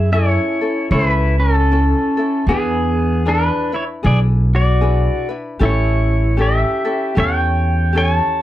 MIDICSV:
0, 0, Header, 1, 4, 480
1, 0, Start_track
1, 0, Tempo, 783290
1, 1514, Time_signature, 4, 2, 24, 8
1, 5160, End_track
2, 0, Start_track
2, 0, Title_t, "Pedal steel guitar"
2, 0, Program_c, 0, 26
2, 0, Note_on_c, 0, 76, 96
2, 76, Note_off_c, 0, 76, 0
2, 78, Note_on_c, 0, 73, 94
2, 86, Note_on_c, 0, 64, 71
2, 535, Note_off_c, 0, 64, 0
2, 560, Note_off_c, 0, 73, 0
2, 563, Note_on_c, 0, 72, 85
2, 566, Note_on_c, 0, 64, 65
2, 679, Note_off_c, 0, 72, 0
2, 679, Note_on_c, 0, 71, 85
2, 831, Note_off_c, 0, 64, 0
2, 855, Note_on_c, 0, 61, 63
2, 856, Note_on_c, 0, 69, 82
2, 858, Note_off_c, 0, 71, 0
2, 1495, Note_off_c, 0, 61, 0
2, 1525, Note_on_c, 0, 68, 80
2, 1529, Note_on_c, 0, 59, 66
2, 1539, Note_off_c, 0, 69, 0
2, 1977, Note_off_c, 0, 59, 0
2, 2010, Note_on_c, 0, 62, 64
2, 2013, Note_off_c, 0, 68, 0
2, 2015, Note_on_c, 0, 71, 88
2, 2273, Note_off_c, 0, 62, 0
2, 2276, Note_off_c, 0, 71, 0
2, 2294, Note_on_c, 0, 64, 65
2, 2303, Note_on_c, 0, 73, 79
2, 2344, Note_off_c, 0, 64, 0
2, 2352, Note_off_c, 0, 73, 0
2, 2486, Note_on_c, 0, 68, 65
2, 2491, Note_on_c, 0, 74, 82
2, 2563, Note_off_c, 0, 68, 0
2, 2568, Note_off_c, 0, 74, 0
2, 2787, Note_on_c, 0, 66, 64
2, 2794, Note_on_c, 0, 74, 88
2, 3231, Note_off_c, 0, 66, 0
2, 3235, Note_off_c, 0, 74, 0
2, 3451, Note_on_c, 0, 64, 64
2, 3464, Note_on_c, 0, 73, 83
2, 3898, Note_off_c, 0, 64, 0
2, 3926, Note_on_c, 0, 67, 69
2, 3932, Note_on_c, 0, 76, 89
2, 3943, Note_off_c, 0, 73, 0
2, 4375, Note_off_c, 0, 67, 0
2, 4399, Note_off_c, 0, 76, 0
2, 4401, Note_on_c, 0, 73, 75
2, 4411, Note_on_c, 0, 79, 94
2, 4853, Note_off_c, 0, 73, 0
2, 4887, Note_on_c, 0, 80, 101
2, 4892, Note_on_c, 0, 73, 82
2, 4896, Note_off_c, 0, 79, 0
2, 4998, Note_off_c, 0, 80, 0
2, 4998, Note_on_c, 0, 81, 101
2, 5154, Note_off_c, 0, 73, 0
2, 5160, Note_off_c, 0, 81, 0
2, 5160, End_track
3, 0, Start_track
3, 0, Title_t, "Ukulele"
3, 0, Program_c, 1, 24
3, 0, Note_on_c, 1, 61, 76
3, 0, Note_on_c, 1, 64, 78
3, 0, Note_on_c, 1, 68, 69
3, 73, Note_off_c, 1, 68, 0
3, 74, Note_off_c, 1, 61, 0
3, 75, Note_on_c, 1, 68, 55
3, 82, Note_on_c, 1, 61, 57
3, 84, Note_off_c, 1, 64, 0
3, 86, Note_on_c, 1, 64, 58
3, 89, Note_on_c, 1, 69, 65
3, 366, Note_off_c, 1, 68, 0
3, 368, Note_off_c, 1, 69, 0
3, 369, Note_off_c, 1, 61, 0
3, 371, Note_off_c, 1, 64, 0
3, 376, Note_on_c, 1, 69, 50
3, 382, Note_on_c, 1, 64, 47
3, 385, Note_on_c, 1, 61, 44
3, 559, Note_off_c, 1, 69, 0
3, 562, Note_off_c, 1, 64, 0
3, 563, Note_off_c, 1, 61, 0
3, 570, Note_on_c, 1, 61, 60
3, 572, Note_on_c, 1, 64, 62
3, 577, Note_on_c, 1, 69, 57
3, 1042, Note_off_c, 1, 61, 0
3, 1045, Note_off_c, 1, 69, 0
3, 1048, Note_off_c, 1, 64, 0
3, 1050, Note_on_c, 1, 64, 65
3, 1052, Note_on_c, 1, 61, 64
3, 1057, Note_on_c, 1, 69, 67
3, 1323, Note_off_c, 1, 69, 0
3, 1330, Note_on_c, 1, 69, 52
3, 1333, Note_off_c, 1, 64, 0
3, 1334, Note_off_c, 1, 61, 0
3, 1341, Note_on_c, 1, 64, 44
3, 1345, Note_on_c, 1, 61, 44
3, 1516, Note_off_c, 1, 69, 0
3, 1520, Note_off_c, 1, 61, 0
3, 1522, Note_off_c, 1, 64, 0
3, 1523, Note_on_c, 1, 62, 73
3, 1523, Note_on_c, 1, 68, 76
3, 1531, Note_on_c, 1, 64, 76
3, 1534, Note_on_c, 1, 71, 79
3, 1987, Note_off_c, 1, 68, 0
3, 1990, Note_off_c, 1, 62, 0
3, 1994, Note_off_c, 1, 71, 0
3, 1994, Note_on_c, 1, 68, 53
3, 1997, Note_on_c, 1, 62, 55
3, 2000, Note_off_c, 1, 64, 0
3, 2001, Note_on_c, 1, 71, 62
3, 2002, Note_on_c, 1, 64, 65
3, 2274, Note_off_c, 1, 71, 0
3, 2279, Note_off_c, 1, 64, 0
3, 2281, Note_on_c, 1, 71, 53
3, 2285, Note_off_c, 1, 68, 0
3, 2286, Note_off_c, 1, 62, 0
3, 2286, Note_on_c, 1, 64, 49
3, 2293, Note_on_c, 1, 62, 46
3, 2465, Note_off_c, 1, 62, 0
3, 2469, Note_on_c, 1, 68, 54
3, 2470, Note_off_c, 1, 64, 0
3, 2472, Note_off_c, 1, 71, 0
3, 2472, Note_on_c, 1, 62, 58
3, 2477, Note_on_c, 1, 64, 64
3, 2481, Note_on_c, 1, 71, 61
3, 2939, Note_off_c, 1, 68, 0
3, 2944, Note_off_c, 1, 62, 0
3, 2947, Note_on_c, 1, 68, 60
3, 2951, Note_on_c, 1, 62, 61
3, 2952, Note_off_c, 1, 64, 0
3, 2953, Note_off_c, 1, 71, 0
3, 2954, Note_on_c, 1, 64, 65
3, 2961, Note_on_c, 1, 71, 60
3, 3232, Note_off_c, 1, 71, 0
3, 3240, Note_on_c, 1, 71, 57
3, 3241, Note_off_c, 1, 64, 0
3, 3241, Note_off_c, 1, 68, 0
3, 3244, Note_off_c, 1, 62, 0
3, 3248, Note_on_c, 1, 64, 47
3, 3252, Note_on_c, 1, 62, 42
3, 3428, Note_on_c, 1, 67, 77
3, 3431, Note_off_c, 1, 62, 0
3, 3431, Note_off_c, 1, 64, 0
3, 3431, Note_off_c, 1, 71, 0
3, 3433, Note_on_c, 1, 61, 75
3, 3436, Note_on_c, 1, 69, 75
3, 3439, Note_on_c, 1, 64, 78
3, 3895, Note_off_c, 1, 67, 0
3, 3899, Note_off_c, 1, 61, 0
3, 3903, Note_on_c, 1, 67, 60
3, 3906, Note_on_c, 1, 61, 59
3, 3908, Note_off_c, 1, 69, 0
3, 3909, Note_off_c, 1, 64, 0
3, 3911, Note_on_c, 1, 64, 58
3, 3915, Note_on_c, 1, 69, 69
3, 4188, Note_off_c, 1, 69, 0
3, 4192, Note_off_c, 1, 64, 0
3, 4196, Note_on_c, 1, 69, 56
3, 4198, Note_off_c, 1, 61, 0
3, 4199, Note_off_c, 1, 67, 0
3, 4199, Note_on_c, 1, 64, 47
3, 4205, Note_on_c, 1, 61, 46
3, 4381, Note_off_c, 1, 64, 0
3, 4381, Note_on_c, 1, 67, 59
3, 4382, Note_off_c, 1, 61, 0
3, 4386, Note_off_c, 1, 69, 0
3, 4389, Note_on_c, 1, 64, 59
3, 4390, Note_on_c, 1, 61, 62
3, 4393, Note_on_c, 1, 69, 70
3, 4850, Note_off_c, 1, 67, 0
3, 4858, Note_on_c, 1, 67, 59
3, 4859, Note_off_c, 1, 61, 0
3, 4866, Note_on_c, 1, 61, 58
3, 4868, Note_off_c, 1, 69, 0
3, 4869, Note_off_c, 1, 64, 0
3, 4872, Note_on_c, 1, 64, 61
3, 4875, Note_on_c, 1, 69, 66
3, 5146, Note_off_c, 1, 69, 0
3, 5151, Note_off_c, 1, 64, 0
3, 5155, Note_off_c, 1, 61, 0
3, 5156, Note_off_c, 1, 67, 0
3, 5160, End_track
4, 0, Start_track
4, 0, Title_t, "Upright bass"
4, 0, Program_c, 2, 32
4, 0, Note_on_c, 2, 42, 86
4, 222, Note_off_c, 2, 42, 0
4, 556, Note_on_c, 2, 37, 93
4, 1180, Note_off_c, 2, 37, 0
4, 1511, Note_on_c, 2, 40, 84
4, 2136, Note_off_c, 2, 40, 0
4, 2479, Note_on_c, 2, 35, 91
4, 3101, Note_off_c, 2, 35, 0
4, 3435, Note_on_c, 2, 33, 91
4, 4058, Note_off_c, 2, 33, 0
4, 4394, Note_on_c, 2, 40, 94
4, 5018, Note_off_c, 2, 40, 0
4, 5160, End_track
0, 0, End_of_file